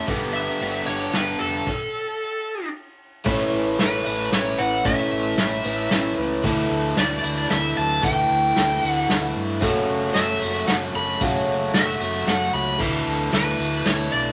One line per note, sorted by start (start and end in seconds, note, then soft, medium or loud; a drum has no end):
0.06 0.47 G1 medium
0.06 0.85 G2 medium
0.06 0.85 D3 medium
0.06 0.59 G3 medium
0.06 0.86 G3 medium
0.06 0.60 B3 medium
0.06 0.86 B3 medium
0.06 0.61 D4 medium
0.06 0.86 D4 medium
0.06 0.85 G4 medium
0.06 0.61 A4 medium
0.06 kick medium
0.06 ride medium
0.33 0.86 E5 medium
0.60 0.80 G1 medium
0.60 1.11 G3 soft
0.60 1.12 B3 medium
0.60 1.13 D4 soft
0.60 1.14 A4 medium
0.60 ride medium
0.86 1.06 G1 medium
0.86 1.66 G2 medium
0.86 1.66 D3 medium
0.86 1.66 G3 medium
0.86 1.65 B3 medium
0.86 1.65 D4 medium
0.86 1.65 G4 medium
0.86 1.14 C#5 medium
1.12 1.34 G1 medium
1.12 1.66 G3 medium
1.12 1.67 B3 medium
1.12 1.67 D4 soft
1.12 1.67 A4 medium
1.12 1.38 B4 medium
1.12 snare medium
1.12 ride medium
1.40 1.60 F1 medium
1.40 2.69 A4 medium
1.67 kick medium
1.67 crash medium
3.25 3.48 A1 medium
3.25 4.84 A2 medium
3.25 3.77 E3 medium
3.25 3.78 A3 medium
3.25 3.79 A3 medium
3.25 3.78 C#4 medium
3.25 3.80 C#4 medium
3.25 3.80 E4 medium
3.25 3.80 E4 loud
3.25 3.79 B4 loud
3.25 kick loud
3.25 crash loud
3.25 tambourine medium
3.53 3.74 A1 medium
3.78 4.01 A1 medium
3.78 4.85 E3 medium
3.78 4.30 A3 medium
3.78 4.07 A3 medium
3.78 4.30 C#4 medium
3.78 4.05 C#4 medium
3.78 4.32 E4 medium
3.78 4.04 E4 medium
3.78 4.29 B4 medium
3.78 4.32 B4 medium
3.78 snare medium
3.78 closed hi-hat medium
4.04 4.28 A1 medium
4.04 4.85 A3 medium
4.04 4.86 C#4 medium
4.04 4.86 E4 medium
4.04 tambourine medium
4.31 4.54 A1 medium
4.31 4.58 A3 medium
4.31 4.58 C#4 medium
4.31 4.58 E4 medium
4.31 4.56 B4 medium
4.31 4.60 C#5 medium
4.31 snare medium
4.31 closed hi-hat medium
4.31 tambourine soft
4.58 4.81 A1 medium
4.58 4.83 C#4 soft
4.58 4.84 E4 soft
4.58 4.84 B4 medium
4.58 4.86 F#5 loud
4.84 5.07 A1 medium
4.84 5.64 A2 medium
4.84 5.37 E3 medium
4.84 5.37 A3 medium
4.84 5.38 A3 medium
4.84 5.37 C#4 medium
4.84 5.39 C#4 medium
4.84 5.39 E4 medium
4.84 5.41 E4 loud
4.84 5.38 B4 medium
4.84 6.14 E5 medium
4.84 kick loud
4.84 closed hi-hat medium
4.84 tambourine medium
5.12 5.33 A1 medium
5.37 5.60 A1 medium
5.37 6.43 E3 medium
5.37 5.64 A3 medium
5.37 5.66 A3 medium
5.37 5.65 C#4 medium
5.37 5.64 C#4 medium
5.37 5.64 E4 medium
5.37 5.63 B4 medium
5.37 snare medium
5.37 closed hi-hat medium
5.41 5.63 E4 medium
5.63 5.86 A1 medium
5.63 6.44 A3 medium
5.63 6.43 C#4 medium
5.63 5.90 C#4 soft
5.63 6.46 E4 medium
5.63 5.91 E4 medium
5.63 5.91 B4 medium
5.63 tambourine medium
5.90 6.13 A1 medium
5.90 6.17 A3 medium
5.90 6.17 C#4 medium
5.90 6.18 E4 medium
5.90 6.16 B4 medium
5.90 snare medium
5.90 closed hi-hat medium
5.90 tambourine soft
6.17 6.39 C#2 medium
6.17 6.44 C#4 soft
6.17 6.43 E4 soft
6.17 6.44 B4 medium
6.43 6.66 D2 medium
6.43 6.96 D3 medium
6.43 6.97 D3 medium
6.43 6.95 E3 medium
6.43 6.98 A3 medium
6.43 6.97 A3 medium
6.43 6.99 D4 medium
6.43 6.97 E4 loud
6.43 6.99 E4 loud
6.43 6.99 A4 loud
6.43 kick loud
6.43 crash medium
6.43 tambourine medium
6.70 6.92 D2 medium
6.96 7.19 D2 medium
6.96 7.50 D3 medium
6.96 7.48 E3 medium
6.96 7.50 A3 medium
6.96 7.26 A3 medium
6.96 7.23 D4 medium
6.96 7.50 E4 medium
6.96 7.22 E4 medium
6.96 7.51 A4 medium
6.96 7.52 D5 medium
6.96 snare medium
6.96 closed hi-hat medium
7.23 7.45 D2 medium
7.23 8.02 A3 medium
7.23 8.02 D4 medium
7.23 8.03 E4 medium
7.23 tambourine medium
7.49 7.72 D2 medium
7.49 8.01 E3 medium
7.49 8.03 A3 medium
7.49 8.03 E4 medium
7.49 8.04 A4 medium
7.49 7.77 E5 medium
7.49 snare medium
7.49 closed hi-hat medium
7.49 tambourine soft
7.77 7.99 D2 medium
7.77 8.01 A5 loud
8.02 8.25 D2 medium
8.02 8.54 D3 medium
8.02 8.55 D3 medium
8.02 8.53 E3 medium
8.02 8.56 A3 loud
8.02 8.56 A3 medium
8.02 8.56 D4 medium
8.02 8.55 E4 medium
8.02 8.57 E4 medium
8.02 8.57 A4 medium
8.02 8.88 G5 medium
8.02 kick loud
8.02 closed hi-hat medium
8.02 tambourine medium
8.30 8.52 D2 medium
8.43 tambourine soft
8.54 8.78 D2 medium
8.54 9.09 D3 medium
8.54 9.07 E3 medium
8.54 9.09 A3 medium
8.54 8.84 A3 medium
8.54 8.82 D4 medium
8.54 9.09 E4 medium
8.54 8.80 E4 medium
8.54 9.11 A4 medium
8.54 snare medium
8.54 closed hi-hat medium
8.81 9.05 D2 medium
8.81 9.62 A3 medium
8.81 9.61 D4 medium
8.81 9.60 E4 medium
8.81 tambourine medium
8.88 9.32 F#5 medium
9.08 9.31 D2 medium
9.08 9.61 E3 medium
9.08 9.61 A3 medium
9.08 9.62 E4 medium
9.08 9.62 A4 medium
9.08 snare medium
9.08 closed hi-hat medium
9.23 tambourine soft
9.36 9.64 G2 medium
9.60 9.84 F#1 medium
9.60 11.20 F#2 medium
9.60 10.14 F#2 medium
9.60 10.14 C#3 medium
9.60 10.41 C#3 medium
9.60 10.12 F#3 medium
9.60 10.13 F#3 loud
9.60 10.14 A3 medium
9.60 10.15 A3 medium
9.60 10.16 C#4 medium
9.60 10.14 F#4 medium
9.60 10.17 F#4 medium
9.60 10.16 A4 loud
9.60 kick loud
9.60 crash medium
9.60 tambourine loud
9.89 10.11 F#1 medium
10.13 10.37 F#1 medium
10.13 10.65 F#3 medium
10.13 10.42 F#3 medium
10.13 10.67 A3 medium
10.13 10.42 A3 medium
10.13 10.40 C#4 medium
10.13 10.67 F#4 medium
10.13 10.39 F#4 medium
10.13 10.69 A4 medium
10.13 10.64 E5 medium
10.13 snare medium
10.13 closed hi-hat medium
10.40 10.63 F#1 medium
10.40 11.20 F#3 medium
10.40 11.22 A3 medium
10.40 11.22 C#4 medium
10.40 11.22 F#4 medium
10.40 tambourine loud
10.67 10.89 F#1 medium
10.67 10.94 F#3 medium
10.67 10.94 A3 medium
10.67 10.92 F#4 medium
10.67 10.91 A4 medium
10.67 10.75 F#5 medium
10.67 snare medium
10.67 closed hi-hat medium
10.67 tambourine soft
10.93 11.16 F#1 medium
10.93 11.20 F#3 soft
10.93 11.20 A3 soft
10.93 11.21 F#4 soft
10.93 11.20 A4 medium
10.93 11.20 B5 medium
11.20 11.43 F#1 medium
11.20 12.00 F#2 medium
11.20 11.74 F#2 medium
11.20 12.00 C#3 medium
11.20 11.74 C#3 medium
11.20 11.72 F#3 medium
11.20 11.74 A3 medium
11.20 11.74 C#4 loud
11.20 11.74 F#4 medium
11.20 11.75 F#4 medium
11.20 11.76 A4 medium
11.20 kick loud
11.20 closed hi-hat medium
11.20 tambourine loud
11.47 11.69 F#1 medium
11.73 11.95 F#1 medium
11.73 12.01 F#3 medium
11.73 12.25 F#3 medium
11.73 12.27 A3 medium
11.73 12.02 A3 medium
11.73 11.99 C#4 medium
11.73 12.27 F#4 medium
11.73 11.98 F#4 medium
11.73 12.29 A4 medium
11.73 12.23 E5 medium
11.73 snare medium
11.73 closed hi-hat medium
12.00 12.22 F#1 medium
12.00 12.79 F#3 medium
12.00 12.80 A3 medium
12.00 12.78 C#4 medium
12.00 12.78 F#4 medium
12.00 tambourine medium
12.26 12.49 F#1 medium
12.26 12.78 F#3 medium
12.26 12.79 A3 medium
12.26 12.79 F#4 medium
12.26 12.79 A4 medium
12.26 12.54 F#5 medium
12.26 snare medium
12.26 closed hi-hat medium
12.26 tambourine soft
12.53 12.75 C#2 medium
12.53 12.78 B5 loud
12.77 13.02 D2 medium
12.77 13.32 D3 medium
12.77 13.30 D3 medium
12.77 13.31 E3 medium
12.77 13.32 A3 medium
12.77 13.33 D4 medium
12.77 13.33 E4 medium
12.77 13.34 A4 medium
12.77 kick loud
12.77 crash loud
12.77 tambourine loud
12.82 13.33 E4 loud
13.06 13.28 D2 medium
13.31 13.54 D2 medium
13.31 13.85 D3 medium
13.31 13.84 E3 medium
13.31 13.60 A3 medium
13.31 13.85 A3 medium
13.31 13.59 D4 medium
13.31 13.86 E4 medium
13.31 13.57 E4 medium
13.31 13.88 A4 medium
13.31 13.88 B4 medium
13.31 snare medium
13.31 closed hi-hat medium
13.57 13.81 D2 medium
13.57 14.32 A3 medium
13.57 14.32 D4 medium
13.57 14.32 E4 medium
13.57 tambourine medium
13.84 14.07 D2 medium
13.84 14.32 E3 medium
13.84 14.32 A3 medium
13.84 14.32 E4 medium
13.84 14.32 A4 medium
13.84 14.12 C#5 loud
13.84 snare medium
13.84 closed hi-hat medium
14.12 14.32 B1 medium
14.12 14.32 D5 loud